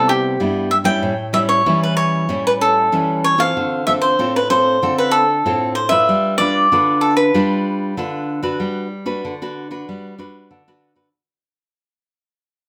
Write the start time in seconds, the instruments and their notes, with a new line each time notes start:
Already playing: nylon-string guitar C3 G3 B3 E4
0.09 cavaquinho G4
0.40 nylon-string guitar G2 G3 B3 E4
0.71 cavaquinho E5
0.84 nylon-string guitar G3 C#4 E4, cavaquinho G5
1.03 nylon-string guitar A2
1.33 nylon-string guitar G3 C#4 E4, cavaquinho E5
1.49 cavaquinho C#5
1.66 nylon-string guitar E3 G3 C#4 E4
1.83 cavaquinho B4
1.97 cavaquinho C#5
2.29 nylon-string guitar A2 G3 C#4 E4
2.47 cavaquinho B4
2.61 cavaquinho A4
2.92 nylon-string guitar E3 G3 C#4 E4
3.24 cavaquinho C#5
3.38 nylon-string guitar C4 F4 A4, cavaquinho F5
3.57 nylon-string guitar D3
3.87 nylon-string guitar C4 F4 A4, cavaquinho E5
4.02 cavaquinho C5
4.19 nylon-string guitar A2 C4 F4 A4
4.36 cavaquinho B4
4.50 nylon-string guitar C4 F4 A4, cavaquinho C5
4.82 nylon-string guitar D3 C4 F4 A4
4.98 cavaquinho B4
5.11 cavaquinho A4
5.46 nylon-string guitar A2 C4 F4 A4
5.75 cavaquinho C5
5.89 nylon-string guitar D4 F4 B4, cavaquinho E5
6.09 nylon-string guitar G3
6.38 nylon-string guitar D4 F4 B4, cavaquinho D5
6.72 nylon-string guitar D3 D4 F4 B4
7.01 cavaquinho A4
7.17 cavaquinho B4
7.34 nylon-string guitar G3 D4 F4 B4
7.97 nylon-string guitar D3 D4 F4 B4
8.43 nylon-string guitar D4 F#4 B4
8.60 nylon-string guitar G3
9.06 nylon-string guitar D4 F#4 B4
9.25 nylon-string guitar D3
9.42 nylon-string guitar D4 F#4 B4
9.71 nylon-string guitar D4 F#4 B4
9.89 nylon-string guitar G3
10.18 nylon-string guitar D4 F#4 B4
10.51 nylon-string guitar D3
10.68 nylon-string guitar D4 F#4 B4
10.95 nylon-string guitar D4 F#4 B4